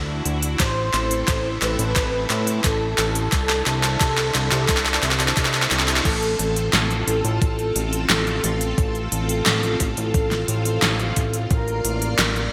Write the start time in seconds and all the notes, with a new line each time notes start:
Already playing: D2 D4 E4 F#4 A4
0.26 D2, closed hi-hat
0.42 closed hi-hat
0.60 A1 C4 A4 C5, kick, snare, closed hi-hat
0.94 A1, snare, closed hi-hat
1.11 closed hi-hat
1.28 A1, kick, snare, closed hi-hat
1.62 A1 B4, snare, closed hi-hat
1.79 A1, closed hi-hat
1.96 A1, kick, snare, closed hi-hat
2.30 A2, snare, closed hi-hat
2.47 closed hi-hat
2.64 A1 A4, kick, snare, closed hi-hat
2.98 A1, snare, closed hi-hat
3.15 closed hi-hat
3.32 C2 D4 C5, kick, snare, closed hi-hat
3.49 snare
3.66 C2, snare, closed hi-hat
3.84 snare, closed hi-hat
4.01 C2, kick, snare, closed hi-hat
4.18 snare
4.35 C2, snare, closed hi-hat
4.52 C2, snare, closed hi-hat
4.69 C2, kick, snare, closed hi-hat
4.77 snare
4.86 snare
4.94 snare
5.03 C2, snare, closed hi-hat
5.12 snare
5.20 snare, closed hi-hat
5.28 snare
5.37 C2, kick, snare, closed hi-hat
5.45 snare
5.54 snare
5.63 snare
5.71 C2, snare, closed hi-hat
5.80 snare
5.88 snare, closed hi-hat
5.97 snare
6.05 A1 C4 F4 A4, kick, closed hi-hat, crash
6.22 closed hi-hat
6.39 A1, closed hi-hat
6.56 closed hi-hat
6.73 A1, snare, clap, closed hi-hat
6.90 closed hi-hat
7.07 A1 A4, closed hi-hat
7.25 A1, closed hi-hat
7.42 A1, kick, closed hi-hat
7.59 closed hi-hat
7.76 A1, closed hi-hat
7.93 closed hi-hat
8.10 A1 A4, snare, clap, closed hi-hat
8.27 closed hi-hat
8.44 A1, closed hi-hat
8.61 closed hi-hat
8.78 A1, kick, closed hi-hat
8.95 closed hi-hat
9.12 A1, closed hi-hat
9.29 closed hi-hat
9.46 A1, snare, clap, closed hi-hat
9.63 closed hi-hat
9.80 A1, kick, closed hi-hat
9.97 A1, closed hi-hat
10.14 A1, kick, closed hi-hat
10.31 snare, closed hi-hat
10.48 A1, closed hi-hat
10.65 closed hi-hat
10.82 A1, snare, clap, closed hi-hat
10.99 closed hi-hat
11.16 A1, kick, closed hi-hat
11.34 closed hi-hat
11.51 A1 A#3 A#4 D5 F5, kick, closed hi-hat
11.68 closed hi-hat
11.85 A1, closed hi-hat
12.02 closed hi-hat
12.19 A1, snare, clap, closed hi-hat
12.36 closed hi-hat